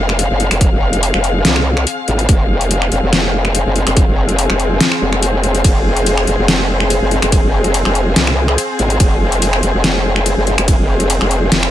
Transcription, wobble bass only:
Already playing: F1
0.30 F#1
0.51 F1
0.72 F1
1.14 F1
1.45 C2
2.08 G#1
2.29 F1
2.92 F1
3.03 F1
3.66 F#1
3.87 F1
4.08 F1
4.50 F1
5.01 F1
5.64 F1
6.27 F1
6.38 F1
7.01 F#1
7.22 F1
7.43 F1
7.85 F1
8.16 C2
8.79 G#1
9.00 F1
9.63 F1
9.74 F1
10.37 F#1
10.58 F1
10.79 F1
11.21 F1
11.52 F1

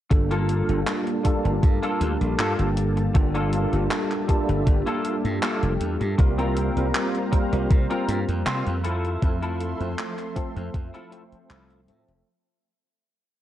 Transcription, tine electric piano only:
0.10 G3 A#3 D4 F4 A4
0.68 G3 A#3 D4 F4 A4
1.23 G3 A#3 D4 F4 A4
3.14 G3 A#3 D4 F4 A4
3.72 G3 A#3 D4 F4 A4
4.27 G3 A#3 D4 F4 A4
6.18 G3 A#3 C4 F4 A#4
6.76 G3 A#3 C4 F4 A#4
7.31 G3 A#3 C4 F4 A#4
9.22 F3 A3 C4 A4 E5
9.80 F3 A3 C4 A4 E5
10.36 F3 A3 C4 A4 E5
11.12 F3 A3 C4 C5 E5
11.88 F3 A3 C4 A4 E5

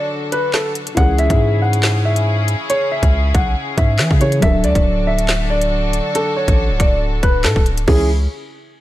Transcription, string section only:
Already playing: D3 D4 F#4 A4
0.97 C#3 C#4 E4 G#4
4.42 D3 D4 F#4 A4
7.88 C#3 C#4 E4 G#4

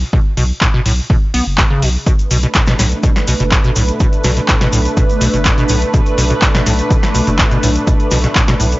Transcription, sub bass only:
0.37 B1
0.86 B1
1.34 B1
1.47 F#1
1.82 B1
2.31 B1
2.79 B1
3.27 B1
3.40 F#1
3.76 B1
4.24 B1
4.73 B1
5.21 B1
5.34 F#1
5.70 B1
6.18 B1
6.66 B1
7.15 B1
7.27 F#1
7.63 B1
8.11 B1
8.60 B1

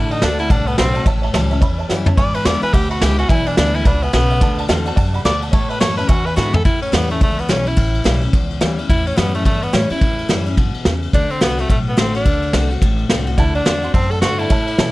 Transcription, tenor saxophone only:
Already playing: E4
0.12 D#4
0.23 D4
0.40 E4
0.51 D4
0.67 B3
0.78 C4
2.18 D5
2.35 B4
2.46 D5
2.63 B4
2.74 G4
2.91 F#4
3.02 G4
3.19 F#4
3.29 E4
3.47 D4
3.58 D4
3.75 E4
3.86 D4
4.03 B3
4.14 B3
5.25 D5
5.53 C#5
5.70 B4
5.80 C#5
5.97 B4
6.09 F#4
6.26 B4
6.37 F#4
6.54 A4
6.65 E4
6.82 C#4
6.94 B3
7.11 A3
7.23 A3
7.40 B3
7.51 C#4
7.67 E4
8.90 E4
9.07 C#4
9.17 B3
9.35 A3
9.46 A3
9.63 B3
9.74 C#4
9.91 E4
11.15 D4
11.31 C4
11.43 B3
11.60 A3
11.71 A3
11.89 B3
12.00 C4
12.16 D4
13.38 E4
13.55 D4
13.94 C4
14.11 A4
14.22 F#4
14.39 E4

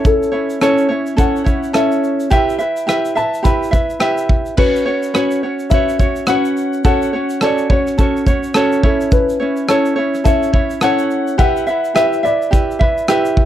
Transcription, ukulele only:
Already playing: C#4 E4 A4 C#5
0.32 C#4 E4 C#5
0.61 C#4 E4 A4 C#5
0.89 C#4 E4 C#5
1.16 C#4 E4 A4 C#5
1.44 C#4 E4 C#5
1.73 C#4 E4 A4 C#5
2.30 E4 G4 B4 E5
2.58 E4 B4 E5
2.87 E4 G4 B4 E5
3.15 E4 B4 E5
3.43 E4 G4 B4 E5
3.71 E4 B4 E5
4.00 E4 G4 B4 E5
4.57 C#4 F#4 B4 C#5
4.86 C#4 F#4 C#5
5.14 C#4 F#4 B4 C#5
5.43 C#4 F#4 C#5
5.71 C#4 F#4 B4 C#5
5.99 C#4 F#4 C#5
6.28 C#4 F#4 B4 C#5
6.84 C#4 F#4 A4 C#5
7.13 C#4 F#4 C#5
7.41 C#4 F#4 A4 C#5
7.70 C#4 F#4 C#5
7.98 C#4 F#4 A4 C#5
8.27 C#4 F#4 C#5
8.54 C#4 F#4 A4 C#5
8.83 C#4 E4 A4 C#5
9.40 C#4 E4 C#5
9.68 C#4 E4 A4 C#5
9.96 C#4 E4 C#5
10.24 C#4 E4 A4 C#5
10.53 C#4 E4 C#5
10.81 C#4 E4 A4 C#5
11.38 E4 G4 B4 E5
11.67 E4 B4 E5
11.95 E4 G4 B4 E5
12.23 E4 B4 E5
12.51 E4 G4 B4 E5
12.79 E4 B4 E5
13.08 E4 G4 B4 E5

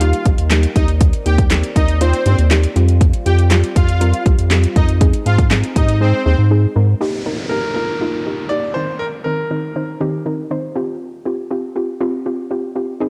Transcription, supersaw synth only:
Already playing: F4 F5
0.76 D#4 D#5
1.26 G4 G5
1.76 D#4 D#5
2.01 C4 C5
2.26 C4 C5
3.26 G4 G5
3.76 F4 F5
4.76 D#4 D#5
5.26 F4 F5
5.76 D#4 D#5
6.01 C4 C5
6.26 C4 C5

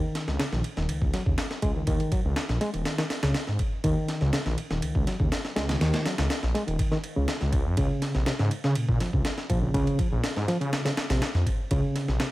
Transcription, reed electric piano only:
Already playing: D#3
0.27 C#3
0.39 C#3
0.52 D#3
0.77 D#3
1.14 F#3
1.26 C#3
1.62 G#3
1.76 D#3
1.87 D#3
2.12 F#3
2.61 G#3
2.74 D#3
2.98 D#3
3.23 C#3
3.84 D#3
4.22 C#3
4.33 C#3
4.46 D#3
4.70 D#3
5.07 F#3
5.20 C#3
5.56 G#3
5.69 D#3
5.81 D#3
6.06 F#3
6.54 G#3
6.67 D#3
6.92 D#3
7.16 C#3
7.77 C#3
8.15 C3
8.27 C3
8.39 C#3
8.64 C#3
9.01 F3
9.14 C3
9.50 F3
9.62 C#3
9.74 C#3
9.99 F3
10.48 F3
10.61 C#3
10.85 C#3
11.10 C3
11.71 C#3
12.08 C3
12.20 C3

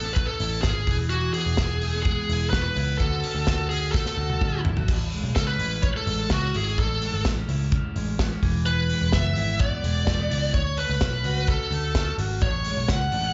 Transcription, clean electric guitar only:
Already playing: A2 E4
0.05 C#4
0.41 E4
0.65 C#4
0.88 E3
1.13 E3 E4
1.36 B3
1.60 E4
1.83 A3
1.95 B3
2.06 G#3
2.30 E4
2.53 B3
2.77 E4
3.01 D3 F#4
3.24 C#4
3.47 F#4
3.71 C#4
3.95 A3
4.18 F#4
4.42 C#4
4.65 E4
4.77 F#4
4.89 A2
5.13 G#3
5.37 C#4
5.60 E4
5.84 C#4
6.08 G#3
6.31 B3
6.44 C#4
6.55 E4
6.79 A2
7.02 G#3
7.26 B3
7.39 C#4
7.50 E4
7.74 C#4
7.97 G#3
8.20 B3
8.32 C#4
8.43 E3
8.67 E3
8.91 G#3
9.14 B3
9.37 E4
9.61 B3
9.85 G#3
10.08 A3
10.19 B3
10.30 E4
10.78 A3
11.02 C#4
11.25 F#4
11.48 C#4
11.73 A3
11.95 C#4
12.19 F#4
12.43 A2
12.66 G#3
12.89 C#4
13.12 D4
13.24 E4

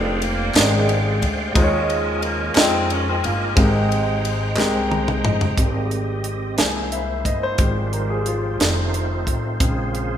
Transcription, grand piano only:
Already playing: A#3 D4 G4 C5
0.56 G#3 C#4 G4 A#4
0.62 D4
1.54 D#3 G#3 D#4 F4 C5
1.63 C#5
2.56 G#3 D#4 F4 D#5
3.56 G#2 G#3 C4 G4 A#4
4.55 G#3 C4 G4 A#4
4.91 A#5
5.25 D#5
5.57 C3 G3 A#3
6.58 E3 G#3 A#3 G#5
6.92 E5
7.26 D#5
7.43 C5
7.59 D#3 G3 G#3
7.93 A#4
8.10 G#4
8.27 F4
8.59 D#3 G3 A3
9.59 C#3 G#3 C4

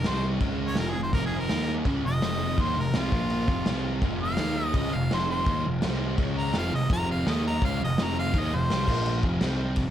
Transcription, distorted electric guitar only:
0.05 C3 G3 C4
0.40 C#3 G#3 C#4
0.77 F2 C3 F3
0.94 F2 C3
1.14 F2 C3 F3
1.49 D#3 A#3 D#4
1.86 C#3 G#3 C#4
2.05 F2 C3
2.22 F2 C3 F3
2.59 D#3 A#3 D#4
2.77 F2 C3
2.95 C3 G3 C4
3.13 A#2 F3 A#3
3.48 F2 C3 F3
3.67 C3 G3 C4
4.03 F2 C3 F3
4.39 D#3 A#3 D#4
4.75 C#3 G#3 C#4
4.94 F2 C3
5.11 F2 C3 F3
5.47 D#3 A#3 D#4
5.66 F2 C3
5.83 C3 G3 C4
6.18 C#3 G#3 C#4
6.55 F2 C3 F3
6.73 F2 C3
6.90 F2 C3 F3
7.26 D#3 A#3 D#4
7.61 C#3 G#3 C#4
7.80 F2 C3
7.99 F2 C3 F3
8.35 D#3 A#3 D#4
8.53 F2 C3
8.70 C3 G3 C4
8.88 A#2 F3 A#3
9.25 F2 C3 F3
9.42 C3 G3 C4

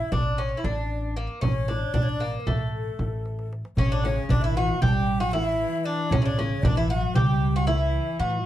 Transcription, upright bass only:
0.12 A1
0.64 A1
1.43 A1
1.94 A1
2.47 A1
2.99 A1
3.77 A1
4.29 A1
4.81 A1
6.11 A1
6.63 A1
7.15 C#2
8.20 A2

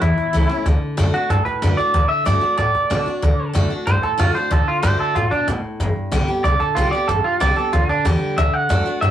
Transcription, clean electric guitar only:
0.01 E4
1.14 F#4
1.30 A4
1.45 B4
1.77 D5
2.09 E5
2.26 D5
2.58 D5
3.87 C5
4.03 A4
4.20 F4
4.35 C5
4.52 A4
4.68 F4
4.83 C5
5.00 A4
5.15 F4
5.31 D4
6.44 D5
6.60 A4
6.75 F4
6.91 D5
7.08 A4
7.24 F4
7.41 D5
7.57 A4
7.73 F4
7.89 D4
8.38 E5
8.54 F#5
9.01 E5

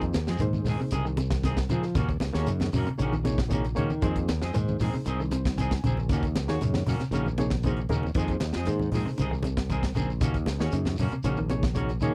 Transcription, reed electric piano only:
Already playing: A#3 D#4 G#4 C5
0.40 A#3 D#4 G#4 C5
2.33 A#3 D#4 G#4 C#5
2.98 A#3 D#4 G#4 C#5
3.24 A#3 D#4 G#4 C#5
3.48 A#3 D#4 G#4 C#5
3.75 A#3 D#4 G#4 C#5
4.02 A#3 D#4 G#4 C5
4.54 A#3 D#4 G#4 C5
5.32 C5
5.58 G#5
6.48 A#3 D#4 G#4 C#5
7.11 A#3 D#4 G#4 C#5
7.38 A#3 D#4 G#4 C#5
7.65 A#3 D#4 G#4 C5
7.89 A#3 D#4 G#4 A#4
8.16 A#3 D#4 G#4 C5
8.67 A#3 D#4 G#4 C5
10.60 A#3 D#4 G#4 C#5
11.24 A#3 D#4 G#4 C#5
11.49 A#3 D#4 G#4 C#5
11.74 A#3 D#4 G#4 C#5
12.02 A#3 D#4 G#4 C#5

